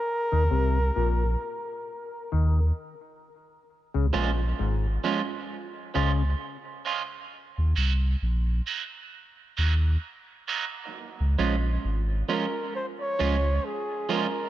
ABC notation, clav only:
X:1
M:4/4
L:1/16
Q:"Swing 16ths" 1/4=66
K:Db
V:1 name="Clav" clef=bass
z E, C,2 B,,2 z4 E,2 z4 | z D, B,,2 A,,2 z4 D,2 z4 | z16 | z16 |]